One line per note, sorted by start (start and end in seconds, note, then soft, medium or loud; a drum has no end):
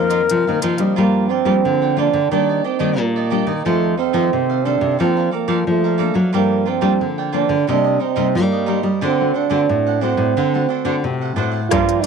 0.00 0.27 F2 medium
0.00 0.28 D#3 soft
0.00 0.20 F3 medium
0.00 0.28 A#3 medium
0.00 0.28 C4 medium
0.00 0.64 C4 medium
0.00 0.59 A#4 medium
0.10 0.21 F4 medium
0.10 0.21 A#4 medium
0.10 0.21 D#5 medium
0.10 0.21 F5 medium
0.10 closed hi-hat soft
0.30 0.94 C3 soft
0.30 0.45 F3 medium
0.30 closed hi-hat medium
0.47 0.75 D#3 medium
0.47 0.63 D#3 medium
0.47 0.76 A#3 medium
0.47 0.76 C4 medium
0.47 0.61 A#4 soft
0.47 0.62 D#5 soft
0.47 0.62 F5 soft
0.62 0.79 F3 medium
0.62 0.78 F4 medium
0.62 0.78 A#4 medium
0.62 0.78 D#5 medium
0.62 0.76 F5 medium
0.62 closed hi-hat soft
0.78 1.41 F3 medium
0.78 0.95 G3 medium
0.78 1.41 A#3 medium
0.78 1.41 D4 medium
0.78 0.96 A#4 soft
0.78 0.95 D#5 soft
0.78 0.94 F5 soft
0.78 closed hi-hat soft
0.96 1.61 G2 medium
0.96 1.26 G3 loud
0.96 1.32 A#3 loud
0.96 1.28 F4 medium
0.96 1.29 A#4 medium
0.96 1.29 D5 medium
0.96 1.30 G5 medium
1.29 1.98 C4 loud
1.29 1.44 F4 soft
1.29 1.44 A#4 soft
1.29 1.45 D5 medium
1.29 1.45 G5 soft
1.45 1.91 F3 medium
1.45 1.61 G3 medium
1.45 1.91 A#3 medium
1.45 1.92 D4 medium
1.45 1.55 F4 medium
1.45 1.55 A#4 medium
1.45 1.56 D5 medium
1.45 1.56 G5 medium
1.64 2.28 D3 medium
1.64 2.08 D3 medium
1.82 1.96 A#4 soft
1.82 1.97 D5 soft
1.82 1.97 G5 soft
1.96 2.17 F3 medium
1.96 2.17 A#3 medium
1.96 2.17 D4 medium
1.96 2.30 D4 loud
1.96 2.29 F4 medium
1.96 2.30 A#4 medium
1.96 2.30 D5 medium
1.96 2.31 G5 medium
2.13 2.28 D3 medium
2.31 2.60 D#3 medium
2.31 2.96 D#3 medium
2.31 2.63 G3 medium
2.31 2.63 A#3 medium
2.31 2.47 D4 medium
2.31 2.63 D4 loud
2.31 2.64 D4 medium
2.31 2.47 G4 medium
2.31 2.48 D5 medium
2.31 2.47 D#5 medium
2.49 2.63 G4 soft
2.49 2.64 D5 soft
2.49 2.64 D#5 soft
2.64 3.01 C4 medium
2.64 2.78 D4 soft
2.64 2.78 G4 soft
2.64 2.79 D5 soft
2.64 2.79 D#5 medium
2.79 2.99 D#3 medium
2.79 3.26 G3 medium
2.79 3.26 A#3 medium
2.79 2.89 D4 medium
2.79 3.26 D4 medium
2.79 2.90 G4 medium
2.79 2.90 D5 medium
2.79 2.90 D#5 medium
2.99 3.41 A#2 medium
2.99 3.63 A#2 medium
2.99 3.49 A#3 medium
3.16 3.30 G4 soft
3.16 3.31 D5 soft
3.16 3.31 D#5 soft
3.30 3.51 G3 medium
3.30 3.52 A#3 medium
3.30 3.47 D4 medium
3.30 3.52 D4 medium
3.30 3.47 G4 medium
3.30 3.45 D5 medium
3.30 3.46 D#5 medium
3.46 3.62 D#3 medium
3.46 3.64 G4 soft
3.46 3.63 D5 soft
3.46 3.64 D#5 soft
3.65 4.30 F2 medium
3.65 3.97 D#3 medium
3.65 3.94 F3 loud
3.65 3.97 A3 medium
3.65 3.97 A3 soft
3.65 3.98 C4 medium
3.65 3.96 D#4 medium
3.65 3.97 A4 medium
3.65 3.98 C5 medium
3.65 3.98 F5 medium
3.97 4.67 C4 loud
3.97 4.12 D#4 soft
3.97 4.12 A4 soft
3.97 4.13 C5 soft
3.97 4.13 F5 soft
4.13 4.60 D#3 medium
4.13 4.29 F3 loud
4.13 4.60 A3 medium
4.13 4.60 C4 medium
4.13 4.23 D#4 medium
4.13 4.24 A4 medium
4.13 4.24 C5 medium
4.13 4.24 F5 medium
4.33 4.97 C3 medium
4.33 4.76 C3 medium
4.50 4.64 A4 soft
4.50 4.65 C5 soft
4.50 4.65 F5 soft
4.65 4.94 D#3 medium
4.65 4.94 A3 medium
4.65 4.94 C4 medium
4.65 5.00 D4 medium
4.65 4.97 A4 medium
4.65 4.98 C5 medium
4.65 4.99 F5 medium
4.81 4.96 C3 medium
4.99 5.64 F3 medium
4.99 5.29 F3 medium
4.99 5.45 A#3 medium
4.99 5.32 C4 loud
4.99 5.45 D4 medium
4.99 5.15 A4 medium
4.99 5.45 A4 medium
4.99 5.15 D5 medium
4.99 5.15 F5 medium
4.99 5.16 A#5 medium
5.17 5.31 D5 soft
5.17 5.32 F5 soft
5.17 5.32 A#5 medium
5.31 5.65 A#3 medium
5.31 5.47 A4 soft
5.31 5.47 D5 soft
5.31 5.47 F5 soft
5.31 5.47 A#5 medium
5.48 5.63 F3 medium
5.48 5.94 A#3 medium
5.48 5.95 D4 medium
5.48 5.58 A4 medium
5.48 5.95 A4 medium
5.48 5.58 D5 medium
5.48 5.58 F5 medium
5.48 5.58 A#5 medium
5.67 6.10 F3 medium
5.67 6.31 F3 medium
5.67 6.15 A3 medium
5.84 5.98 D5 soft
5.84 5.98 F5 soft
5.84 5.99 A#5 soft
5.98 6.20 A#3 medium
5.98 6.20 D4 medium
5.98 6.15 A4 medium
5.98 6.20 A4 medium
5.98 6.14 D5 medium
5.98 6.13 F5 medium
5.98 6.13 A#5 medium
6.14 6.30 F#3 medium
6.14 6.32 D5 soft
6.14 6.31 F5 soft
6.14 6.31 A#5 soft
6.33 6.98 G2 medium
6.33 6.79 F3 medium
6.33 6.63 G3 loud
6.33 6.79 A#3 medium
6.33 6.70 A#3 medium
6.33 6.79 D4 medium
6.33 6.64 F4 medium
6.33 6.65 A#4 medium
6.33 6.66 D5 medium
6.33 6.66 G5 medium
6.66 7.08 C4 medium
6.66 6.80 F4 soft
6.66 6.80 A#4 soft
6.66 6.81 D5 soft
6.66 6.81 G5 medium
6.81 7.28 F3 medium
6.81 6.97 G3 loud
6.81 7.28 A#3 medium
6.81 7.29 D4 medium
6.81 6.92 F4 medium
6.81 6.92 A#4 medium
6.81 6.92 D5 medium
6.81 6.92 G5 medium
7.01 7.65 D3 medium
7.01 7.44 D3 medium
7.18 7.32 A#4 soft
7.18 7.33 D5 soft
7.18 7.33 G5 soft
7.33 7.54 F3 medium
7.33 7.54 A#3 medium
7.33 7.54 D4 medium
7.33 7.67 D4 medium
7.33 7.66 F4 medium
7.33 7.66 A#4 medium
7.33 7.67 D5 medium
7.33 7.67 G5 medium
7.49 7.64 D3 medium
7.67 8.32 C3 medium
7.67 7.97 C3 medium
7.67 8.00 G3 medium
7.67 8.00 A#3 medium
7.67 8.05 D4 loud
7.67 7.83 D#4 medium
7.67 7.84 A#4 medium
7.67 7.84 C5 medium
7.67 7.83 D#5 medium
7.84 7.99 A#4 soft
7.84 7.99 C5 soft
7.84 8.00 D#5 soft
8.00 8.40 C4 medium
8.00 8.14 D#4 soft
8.00 8.15 A#4 soft
8.00 8.15 C5 medium
8.00 8.16 D#5 soft
8.16 8.34 C3 medium
8.16 8.63 G3 medium
8.16 8.63 A#3 medium
8.16 8.26 D#4 medium
8.16 8.63 D#4 medium
8.16 8.26 A#4 medium
8.16 8.27 C5 medium
8.16 8.27 D#5 medium
8.35 8.99 G2 medium
8.35 8.78 G3 medium
8.35 8.87 A#3 medium
8.52 8.66 A#4 soft
8.52 8.67 C5 soft
8.52 8.67 D#5 medium
8.66 8.88 G3 medium
8.66 8.89 A#3 medium
8.66 8.83 D#4 medium
8.66 8.89 D#4 medium
8.66 8.84 A#4 medium
8.66 8.83 C5 medium
8.66 8.82 D#5 medium
8.83 8.99 G3 medium
8.83 9.01 A#4 soft
8.83 9.00 C5 soft
8.83 9.00 D#5 medium
9.01 9.31 D3 loud
9.01 9.67 D3 medium
9.01 9.13 A3 medium
9.01 9.13 C4 medium
9.01 9.33 D4 medium
9.01 9.14 F#4 medium
9.01 9.34 A4 medium
9.01 9.34 C5 medium
9.01 9.35 F#5 medium
9.06 9.38 C4 loud
9.21 9.48 A3 medium
9.21 9.48 C4 medium
9.21 9.49 F#4 medium
9.34 9.48 D4 soft
9.34 10.05 D4 medium
9.34 9.49 A4 soft
9.34 9.49 C5 medium
9.34 9.50 F#5 medium
9.50 9.66 D3 medium
9.50 9.97 A3 medium
9.50 9.97 C4 medium
9.50 9.60 D4 medium
9.50 9.97 F#4 medium
9.50 9.61 A4 medium
9.50 9.61 C5 medium
9.50 9.61 F#5 medium
9.69 10.12 A2 medium
9.69 10.34 A2 medium
9.87 10.01 A4 soft
9.87 10.02 C5 soft
9.87 10.02 F#5 soft
10.01 10.34 A3 medium
10.01 10.35 C4 medium
10.01 11.04 C4 medium
10.01 10.35 D4 medium
10.01 10.35 F#4 medium
10.01 10.35 A4 medium
10.01 10.35 C5 medium
10.01 10.36 F#5 medium
10.17 10.33 A2 medium
10.37 10.66 D3 medium
10.37 11.01 D3 medium
10.37 10.52 D4 medium
10.37 10.52 A4 medium
10.37 10.53 C5 medium
10.37 10.53 F#5 medium
10.54 10.83 A3 medium
10.54 10.83 C4 medium
10.54 10.83 F#4 medium
10.54 10.69 A4 soft
10.54 10.69 C5 soft
10.54 10.69 F#5 soft
10.69 10.83 D4 soft
10.69 10.84 A4 soft
10.69 10.84 C5 soft
10.69 10.85 F#5 soft
10.85 11.03 D3 medium
10.85 11.31 A3 medium
10.85 11.32 C4 medium
10.85 10.95 D4 medium
10.85 11.32 F#4 medium
10.85 10.95 A4 medium
10.85 10.95 C5 medium
10.85 10.95 F#5 medium
11.04 11.68 A2 medium
11.04 11.34 C3 medium
11.21 11.35 A4 soft
11.21 11.36 C5 soft
11.21 11.37 F#5 soft
11.36 11.67 A2 medium
11.36 11.59 A3 medium
11.36 11.59 C4 medium
11.36 11.52 D4 medium
11.36 11.60 F#4 medium
11.36 11.52 A4 medium
11.36 11.52 C5 medium
11.36 11.50 F#5 medium
11.51 11.70 A4 soft
11.51 11.69 C5 soft
11.51 11.68 F#5 medium
11.70 12.00 G2 loud
11.70 12.06 G2 medium
11.70 12.06 F3 soft
11.70 12.06 A#3 medium
11.70 12.06 D4 medium
11.70 12.01 F4 medium
11.70 12.05 F4 loud
11.70 12.02 A#4 medium
11.70 12.02 D5 medium
11.70 12.03 G5 medium
11.70 kick medium
11.70 cross-stick medium
11.70 closed hi-hat medium
11.89 closed hi-hat soft
12.02 12.06 F4 soft
12.02 12.06 A#4 soft